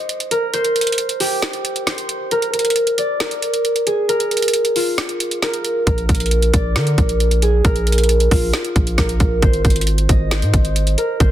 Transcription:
Already playing: C5 D#5
0.09 closed hi-hat
0.20 closed hi-hat
0.31 A#4, closed hi-hat
0.54 C5, closed hi-hat
0.65 closed hi-hat
0.76 closed hi-hat
0.81 closed hi-hat
0.87 closed hi-hat
0.92 closed hi-hat
0.98 closed hi-hat
1.09 closed hi-hat
1.20 G4, open hi-hat
1.42 snare, closed hi-hat
1.53 closed hi-hat
1.65 closed hi-hat
1.76 closed hi-hat
1.87 C5, snare, closed hi-hat
1.98 closed hi-hat
2.09 closed hi-hat
2.31 A#4, closed hi-hat
2.42 closed hi-hat
2.54 A#4, closed hi-hat
2.59 closed hi-hat
2.65 closed hi-hat
2.70 closed hi-hat
2.76 closed hi-hat
2.87 closed hi-hat
2.98 D5, closed hi-hat
3.20 A#4, snare, closed hi-hat
3.31 closed hi-hat
3.42 closed hi-hat
3.54 closed hi-hat
3.65 closed hi-hat
3.76 closed hi-hat
3.87 G#4, closed hi-hat
4.09 A#4, closed hi-hat
4.20 closed hi-hat
4.31 closed hi-hat
4.37 closed hi-hat
4.42 closed hi-hat
4.48 closed hi-hat
4.54 closed hi-hat
4.65 closed hi-hat
4.76 F4, open hi-hat
4.98 snare, closed hi-hat
5.09 closed hi-hat
5.20 closed hi-hat
5.31 closed hi-hat
5.42 A#4, snare, closed hi-hat
5.54 closed hi-hat
5.65 closed hi-hat
5.87 A#1 A#4, kick, closed hi-hat
5.98 closed hi-hat
6.09 A#1 A#4, kick, closed hi-hat
6.15 closed hi-hat
6.20 closed hi-hat
6.26 closed hi-hat
6.31 closed hi-hat
6.42 closed hi-hat
6.54 A#1 D5, kick, closed hi-hat
6.76 D3 A#4, snare, closed hi-hat
6.87 closed hi-hat
6.98 A#1, kick, closed hi-hat
7.09 closed hi-hat
7.20 closed hi-hat
7.31 closed hi-hat
7.42 G#4, closed hi-hat
7.65 A#1 A#4, kick, closed hi-hat
7.76 closed hi-hat
7.87 closed hi-hat
7.92 closed hi-hat
7.98 closed hi-hat
8.04 closed hi-hat
8.09 closed hi-hat
8.20 closed hi-hat
8.31 A#1 F4, kick, open hi-hat
8.54 snare, closed hi-hat
8.64 closed hi-hat
8.76 A#1, kick, closed hi-hat
8.87 closed hi-hat
8.98 A#1 A#4, kick, snare, closed hi-hat
9.09 closed hi-hat
9.20 A#1, kick, closed hi-hat
9.42 G#1 C5, kick, closed hi-hat
9.53 closed hi-hat
9.65 G#1 C5, kick, closed hi-hat
9.70 closed hi-hat
9.76 closed hi-hat
9.81 closed hi-hat
9.87 closed hi-hat
9.98 closed hi-hat
10.09 G#1 D#5, kick, closed hi-hat
10.31 C5, snare, closed hi-hat
10.42 G#2, closed hi-hat
10.54 G#1, kick, closed hi-hat
10.65 closed hi-hat
10.76 closed hi-hat
10.87 closed hi-hat
10.98 A#4, closed hi-hat
11.20 G#1 C5, kick, closed hi-hat

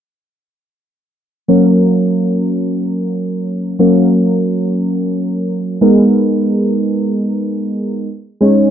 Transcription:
1.48 F#3 A#3 C#4 A#4
3.79 F#3 A#3 C#4 A#4
5.81 G#3 B3 D#4 A#4
8.41 G#3 C#4 D#4 C#5

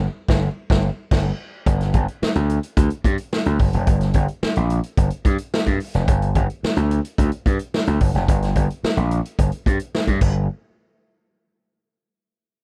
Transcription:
0.28 G1, kick, snare
0.70 G1, kick, snare
1.11 G1, kick, snare, crash
1.66 G1, kick, closed hi-hat
1.81 snare, closed hi-hat
1.94 G1, kick, closed hi-hat
2.08 closed hi-hat
2.22 muted slap bass stroke, snare
2.35 D2, closed hi-hat
2.50 closed hi-hat
2.63 closed hi-hat
2.77 D2, kick, closed hi-hat
2.90 closed hi-hat
3.04 G2, kick, closed hi-hat
3.18 closed hi-hat
3.33 snare
3.45 D2, closed hi-hat
3.59 G1, kick, open hi-hat
3.73 F1, closed hi-hat
3.87 G1, kick, closed hi-hat
4.01 snare, closed hi-hat
4.14 G1, kick, closed hi-hat
4.28 closed hi-hat
4.43 muted slap bass stroke, snare
4.56 A#1, closed hi-hat
4.70 closed hi-hat
4.84 closed hi-hat
4.97 G1, kick, closed hi-hat
5.10 closed hi-hat
5.25 G2, kick, closed hi-hat
5.38 closed hi-hat
5.54 snare
5.66 G2, kick, closed hi-hat
5.80 open hi-hat
5.94 F1, snare, closed hi-hat
6.08 G1, kick, closed hi-hat
6.22 closed hi-hat
6.35 G1, kick, closed hi-hat
6.50 closed hi-hat
6.63 muted slap bass stroke, snare
6.77 D2, closed hi-hat
6.91 closed hi-hat
7.05 closed hi-hat
7.18 D2, kick, closed hi-hat
7.32 closed hi-hat
7.46 G2, kick, closed hi-hat
7.59 closed hi-hat
7.74 snare
7.87 D2, closed hi-hat
8.00 G1, kick, open hi-hat
8.15 F1, snare, closed hi-hat
8.28 G1, kick, closed hi-hat
8.42 snare, closed hi-hat
8.56 G1, kick, closed hi-hat
8.70 closed hi-hat
8.83 muted slap bass stroke, snare
8.97 A#1, closed hi-hat
9.11 closed hi-hat
9.25 closed hi-hat
9.39 G1, kick, closed hi-hat
9.52 closed hi-hat
9.66 G2, kick, closed hi-hat
9.79 closed hi-hat
9.95 snare
10.07 G2, kick, closed hi-hat
10.21 G1, kick, crash

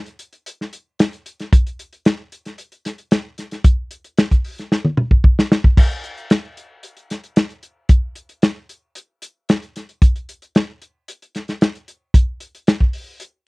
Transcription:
0.06 closed hi-hat
0.19 closed hi-hat
0.33 closed hi-hat
0.46 closed hi-hat
0.61 snare
0.73 closed hi-hat
0.99 snare, closed hi-hat
1.13 closed hi-hat
1.26 closed hi-hat
1.40 snare, closed hi-hat
1.53 kick, closed hi-hat
1.67 closed hi-hat
1.79 closed hi-hat
1.93 closed hi-hat
2.05 snare, closed hi-hat
2.32 closed hi-hat
2.45 snare, closed hi-hat
2.58 closed hi-hat
2.72 closed hi-hat
2.85 snare, closed hi-hat
2.98 closed hi-hat
3.11 snare, closed hi-hat
3.38 snare, closed hi-hat
3.51 snare, closed hi-hat
3.64 kick, closed hi-hat
3.91 closed hi-hat
4.04 closed hi-hat
4.18 snare, closed hi-hat
4.31 kick, closed hi-hat
4.44 open hi-hat
4.58 snare, closed hi-hat
4.72 snare
4.85 high tom
4.97 mid tom
5.11 kick
5.24 kick
5.39 snare
5.52 snare
5.64 kick
5.77 kick, crash
5.91 closed hi-hat
6.04 closed hi-hat
6.17 closed hi-hat
6.30 snare, closed hi-hat
6.57 closed hi-hat
6.83 closed hi-hat
6.97 closed hi-hat
7.10 snare, closed hi-hat
7.24 closed hi-hat
7.36 snare, closed hi-hat
7.50 closed hi-hat
7.63 closed hi-hat
7.89 kick, closed hi-hat
8.15 closed hi-hat
8.29 closed hi-hat
8.42 snare, closed hi-hat
8.69 closed hi-hat
8.95 closed hi-hat
9.22 closed hi-hat
9.49 snare, closed hi-hat
9.62 closed hi-hat
9.76 snare, closed hi-hat
9.89 closed hi-hat
10.02 kick, closed hi-hat
10.16 closed hi-hat
10.29 closed hi-hat
10.42 closed hi-hat
10.55 snare, closed hi-hat
10.82 closed hi-hat
11.08 closed hi-hat
11.22 closed hi-hat
11.35 snare, closed hi-hat
11.48 snare, closed hi-hat
11.61 snare, closed hi-hat
11.75 closed hi-hat
11.88 closed hi-hat
12.14 kick, closed hi-hat
12.40 closed hi-hat
12.55 closed hi-hat
12.67 snare, closed hi-hat
12.80 kick
12.93 open hi-hat
13.20 closed hi-hat

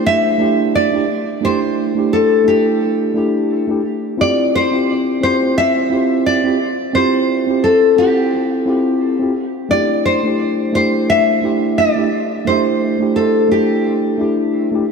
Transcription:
Already playing: A3 D4 E4 G4
0.06 E5
0.38 A3 D4 E4 G4
0.75 D5
0.92 A3 D4 E4 G4
1.41 A3 D4 E4 G4 C5
1.95 A3 D4 E4 G4
2.13 A4
2.44 A3 D4 E4 G4
3.14 A3 D4 E4 G4
3.68 A3 D4 E4 G4
4.18 C4 E4 F4 G4 D5
4.55 C5
4.71 C4 E4 F4 G4
5.21 C4 E4 F4 G4 C5
5.58 E5
5.90 C4 E4 F4 G4
6.26 D5
6.44 C4 E4 F4 G4
6.93 C4 E4 F4 G4 C5
7.47 C4 E4 F4
7.51 G4
7.64 A4
7.97 C4 E4 F4 G4
8.66 C4 E4 F4 G4
9.19 C4 E4 F4 G4
9.69 A3 D4 E4 G4 D5
10.05 C5
10.23 A3 D4 E4 G4
10.73 A3 D4 E4 G4 C5
11.10 E5
11.42 A3 D4 E4 G4
11.78 D5
11.95 A3 D4 E4 G4
12.45 A3 D4 E4 G4 C5
12.99 A3 D4 E4 G4
13.16 A4
13.48 A3 D4 E4 G4
14.18 A3 D4 E4 G4
14.72 A3 D4 E4 G4

